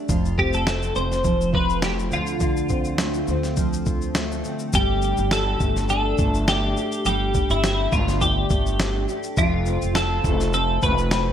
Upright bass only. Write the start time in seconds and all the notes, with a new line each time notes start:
0.09 F1
0.96 F1
2.12 D2
3.28 D2
4.74 G1
5.19 G1
5.60 G1
6.19 G1
7.05 G1
7.50 G1
7.92 G1
8.50 G1
9.37 F1
9.83 F1
10.24 F1
10.83 F1